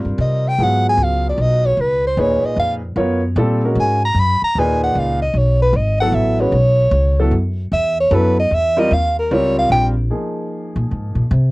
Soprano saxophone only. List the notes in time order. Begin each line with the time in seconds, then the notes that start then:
0.22 D#5
0.48 G5
0.63 F#5
0.89 G#5
1.03 F5
1.29 D5
1.42 D#5
1.66 C#5
1.81 B4
2.07 C5
2.21 C#5
2.45 D#5
2.60 F5
3.80 G#5
4.05 A#5
4.20 B5
4.44 A#5
4.59 G#5
4.84 F#5
4.99 F5
5.22 D#5
5.38 C#5
5.62 B4
5.76 D#5
6.01 F#5
6.15 E5
6.40 C#5
7.73 E5
8.00 C#5
8.15 B4
8.40 D#5
8.54 E5
8.80 D#5
8.94 F5
9.19 A#4
9.34 C#5
9.59 F5
9.72 G5